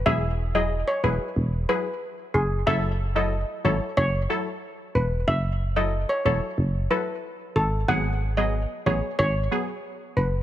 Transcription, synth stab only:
\new Staff \with { instrumentName = "Synth stab" } { \time 4/4 \key fis \dorian \tempo 4 = 92 <fis e' gis'>8. <fis e' gis'>8. <fis e' gis'>8 r8 <fis e' gis'>16 r4 r16 | <fis e' a'>8. <fis e' a'>8. <fis e' a'>8 r8 <fis e' a'>16 r4 r16 | r8. <fis e' a'>8. <fis e' a'>8 r8 <fis e' a'>16 r4 r16 | <fis b gis'>8. <fis b gis'>8. <fis b gis'>8 r8 <fis b gis'>16 r4 r16 | }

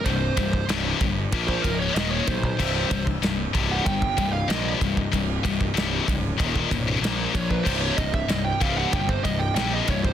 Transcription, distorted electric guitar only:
\new Staff \with { instrumentName = "Distorted electric guitar" } { \clef bass \time 4/4 \key c \phrygian \tempo 4 = 95 <c, g,>8 <c, g,>8 <c, g, c>8 <c, g,>8 <bes, f bes>8 <bes, f>8 <ees, bes, ees>8 <ees, bes,>8 | <c, g, c>8 <c, g,>8 <c, g,>8 <c, g, c>8 <c, g,>8 <c, g,>8 <c, g, c>8 <c, g,>8 | <c, g,>8 <c, g,>8 <c, g, c>8 <c, g,>8 <ees, bes, ees>8 <ees, bes,>8 <bes, f bes>8 <bes, f>8 | <c, g, c>8 <c, g,>8 <c, g,>8 <c, g, c>8 <c, g,>8 <c, g,>8 <c, g, c>8 <c, g,>8 | }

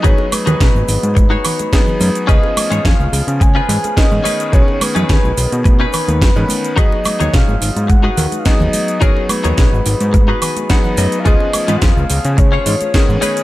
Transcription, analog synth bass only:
\new Staff \with { instrumentName = "Analog synth bass" } { \clef bass \time 4/4 \key gis \dorian \tempo 4 = 107 gis,,16 r8 dis,16 b,,16 gis,,16 gis,,16 gis,8 r4 r16 fis,16 r16 | cis,16 r8 gis,16 eis,16 cis,16 cis,16 cis8 r16 gis,16 r8 gis,16 r8 | b,,16 r8 fis,16 dis,16 b,,16 b,,16 b,8 r8 dis,16 fis,16 gis,16 r8 | gis,,16 r8 dis,16 b,,16 gis,,16 gis,,16 gis,8 r16 dis,16 r8 dis,16 r8 |
gis,,16 r8 dis,16 b,,16 gis,,16 gis,,16 gis,8 r4 r16 fis,16 r16 | cis,16 r8 gis,16 eis,16 cis,16 cis,16 cis8 r16 gis,16 r8 gis,16 r8 | }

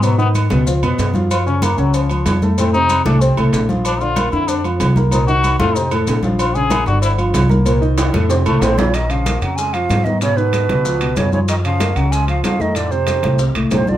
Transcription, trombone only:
\new Staff \with { instrumentName = "Trombone" } { \clef bass \time 4/4 \key bes \minor \tempo 4 = 189 ges8 ces'8 r2. | f'8 des'8 bes8 ges8 f4. r8 | c'8 ees'4 d'8 c'8 r4. | d'8 f'4 e'8 d'8 r4. |
ees'8 ges'4 f'8 ees'8 r4. | f'8 aes'4 ges'8 e'8 r4. | r2 r8 a8 c'8 des8 | ees8 f4 ges8 aes8 f4 ees8 |
des8 ces2~ ces8 des8 des8 | ees8 f4 ges8 aes8 f8 f8 ees8 | d8 c4. r4 c8 d8 | }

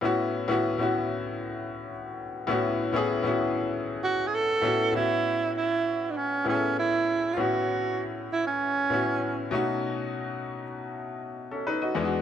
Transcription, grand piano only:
\new Staff \with { instrumentName = "Grand piano" } { \time 4/4 \key a \major \tempo 4 = 98 << { r1 | r1 | r1 | r1 |
r2 r8. <cis' a'>16 <dis' b'>16 <fis' dis''>8 r16 | } \\ { <a, b cis' e' fis'>8. <a, b cis' e' fis'>8 <a, b cis' e' fis'>4.~ <a, b cis' e' fis'>16 r4 | <a, b cis' e' fis'>8. <a, b cis' e' gis'>8 <a, b cis' e' fis'>4.~ <a, b cis' e' fis'>16 r8 <a, b cis' e' fis'>8 | <a, b cis' e' fis'>4.~ <a, b cis' e' fis'>16 r8. <a, b cis' e' gis' a'>4~ <a, b cis' e' gis' a'>16 r16 | <a, b cis' e' fis'>4.~ <a, b cis' e' fis'>16 r8. <a, b cis' e' fis'>4 <b, a cis' dis' fis'>8~ |
<b, a cis' dis' fis'>4~ <b, a cis' dis' fis'>16 r2 r16 <e, gis b d' e' fis'>8 | } >> }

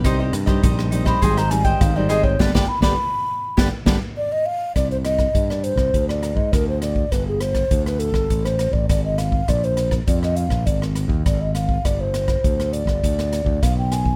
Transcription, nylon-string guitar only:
\new Staff \with { instrumentName = "Nylon-string guitar" } { \clef bass \time 4/4 \key c \minor \tempo 4 = 102 << { <g c' ees'>8 r16 <g c' ees'>8. <g c' ees'>8 <g c' ees'>16 r16 <g c' ees'>8. <g c' ees'>8. | <d g b>16 <d g b>16 r16 <d g b>16 r4 <d g b>16 r16 <d g b>16 r4 r16 | r1 | r1 |
r1 | r1 | } \\ { c4 g,4 aes,4 ees4 | r1 | r1 | r1 |
r1 | r1 | } >> }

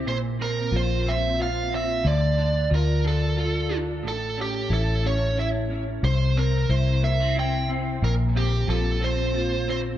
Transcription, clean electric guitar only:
\new Staff \with { instrumentName = "Clean electric guitar" } { \time 6/8 \key bes \lydian \tempo 4. = 60 bes,8 c'8 f'8 c'8 f'8 c'8 | d8 d'8 f'8 d'8 f'8 d'8 | a,8 cis'8 e'8 cis'8 e'8 cis'8 | c8 c'8 e'8 bes16 c'16 e'8 c'8 |
bes,8 c'8 f'8 c'8 f'8 c'8 | }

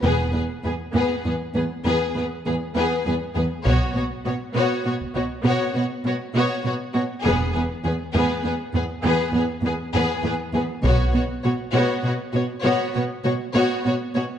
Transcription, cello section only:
\new Staff \with { instrumentName = "Cello section" } { \clef bass \time 12/8 \key e \major \tempo 4. = 67 e,8 e,8 e,8 e,8 e,8 e,8 e,8 e,8 e,8 e,8 e,8 e,8 | b,8 b,8 b,8 b,8 b,8 b,8 b,8 b,8 b,8 b,8 b,8 b,8 | e,8 e,8 e,8 e,8 e,8 e,8 e,8 e,8 e,8 e,8 e,8 e,8 | b,8 b,8 b,8 b,8 b,8 b,8 b,8 b,8 b,8 b,8 b,8 b,8 | }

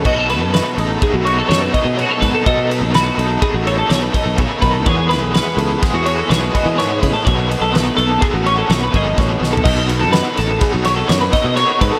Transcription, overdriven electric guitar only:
\new Staff \with { instrumentName = "Overdriven electric guitar" } { \time 5/4 \key b \mixolydian \tempo 4 = 125 <b, fis a dis' a'>8 <a dis' a'>8 <b, fis a dis' a'>8 <a dis' a'>8 <fis a dis' a'>8 <b, fis a dis' a'>8 <fis a dis' a'>8 <a dis' a'>8 <b, fis a dis' a'>8 <a dis' a'>8 | <b, fis a dis' a'>8 <a dis' a'>8 <b, fis a dis' a'>8 <a dis' a'>8 <fis a dis' a'>8 <b, fis a dis' a'>8 <fis a dis' a'>8 <a dis' a'>8 <b, fis a dis' a'>8 <a dis' a'>8 | <e gis b e' gis'>8 <b e' gis'>8 <e gis b e' gis'>8 <b e' gis'>8 <gis b e' gis'>8 <e gis b e' gis'>8 <gis b e' gis'>8 <b e' gis'>8 <e gis b e' gis'>8 <b e' gis'>8 | <b, dis fis b dis' a'>8 <fis b dis' a'>8 <b, dis fis b dis' a'>8 <fis b dis' a'>8 <fis b dis' a'>8 <b, dis fis b dis' a'>8 <fis b dis' a'>8 <fis b dis' a'>8 <b, dis fis b dis' a'>8 <fis b dis' a'>8 |
<b, dis fis b dis' a'>8 <fis b dis' a'>8 <b, dis fis b dis' a'>8 <fis b dis' a'>8 <fis b dis' a'>8 <b, dis fis b dis' a'>8 <fis b dis' a'>8 <fis b dis' a'>8 <b, dis fis b dis' a'>8 <fis b dis' a'>8 | }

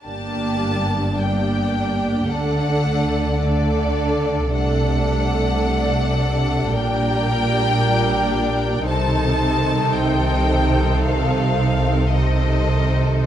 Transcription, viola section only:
\new Staff \with { instrumentName = "Viola section" } { \time 4/4 \key g \minor \tempo 4 = 55 <bes d'>4 <bes d'>4 <a d'>4 <a d'>4 | <a d'>2 <g d'>2 | <ees ees'>2. <ees ees'>4 | }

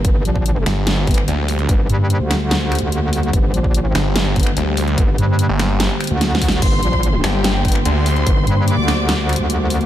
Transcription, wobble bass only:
\new Staff \with { instrumentName = "Wobble bass" } { \clef bass \time 4/4 \key g \minor \tempo 4 = 146 g,,8 bes,,4 r4 g,,8 r4 | g,,8 g,8. d,4. d,4~ d,16 | g,,8 bes,,4 r4 g,,8 r4 | g,,8 g,8. r4. d,4~ d,16 |
g,,8 bes,,4 r4 g,,8 r4 | g,,8 g,8. d,4. d,4~ d,16 | }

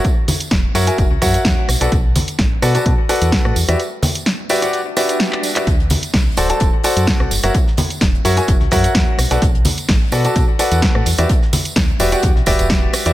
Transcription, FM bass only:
\new Staff \with { instrumentName = "FM bass" } { \clef bass \time 4/4 \key e \minor \tempo 4 = 128 r4 e,,16 r16 fis,16 r16 fis,,16 cis,16 fis,16 r16 e,16 r16 b,,16 b,,16 | b,,8 r8 a,,16 r16 b,16 r16 b,16 r8 e,16 r16 a,16 e,16 e,16 | r1 | d,8 r8 c,16 r16 d,,16 r16 d,,16 r8 fis,16 r16 c,16 fis,,16 fis,,16 |
r4 e,,16 r16 fis,16 r16 fis,,16 cis,16 fis,16 r16 e,16 r16 b,,16 b,,16 | b,,8 r8 a,,16 r16 b,16 r16 b,16 r8 e,16 r16 a,16 e,16 e,16 | r4 d,16 r16 e,,16 r16 e,16 b,,16 e,,16 e,,8 r8 e,16 | }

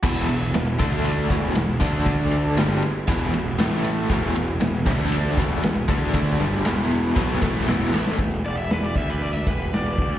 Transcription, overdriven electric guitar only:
\new Staff \with { instrumentName = "Overdriven electric guitar" } { \clef bass \time 4/4 \key e \mixolydian \tempo 4 = 118 <e, b, e>8 <e, b,>8 <e, b,>8 <d a d'>4 <e, b, e>8 <e, b,>8 <d a d'>8~ | <d a d'>4 <g, d g>8 r8 <e, b, e>8 <e, b,>8 <a, e a>4 | <e, b, e>8 <e, b,>8 <e, b,>8 <d a d'>4 <e, b, e>8 <e, b,>8 <d a d'>8 | <d a d'>8 <g, d g>8 <e, b, e>4 <b, fis b>8 <a, e a>8 <e, b, e>8 <a, e a>8 |
r1 | }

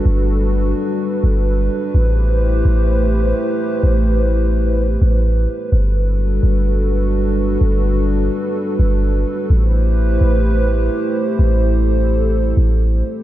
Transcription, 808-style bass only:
\new Staff \with { instrumentName = "808-style bass" } { \clef bass \time 4/4 \key a \dorian \tempo 4 = 127 g,,4. r4 g,,4 r8 | a,,4. a,,4. r4 | a,,2~ a,,8 a,,4 r8 | g,,4. g,,2~ g,,8 |
g,,4. r4 g,,4 r8 | a,,4. a,,4. r4 | a,,2~ a,,8 a,,4 r8 | }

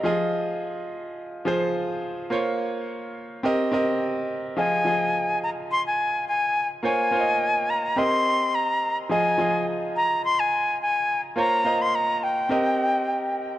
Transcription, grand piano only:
\new Staff \with { instrumentName = "Grand piano" } { \time 4/4 \key f \minor \tempo 4 = 106 <f f' aes' ees''>4. r4 <f f' aes' c''>4 r8 | <bes f' c'' des''>4. r8 <c' g' bes' ees''>8 <c' g' bes' ees''>4 r8 | <f f' aes' ees''>8 <f f' aes' ees''>4. r2 | <bes f' c'' des''>8 <bes f' c'' des'' ees''>4. <c' g' bes' ees''>4. r8 |
<f f' aes' ees''>8 <f f' aes' ees''>4. r2 | <bes f' c'' des''>8 <bes f' c'' ees''>4. <c' g' bes' ees''>4. r8 | }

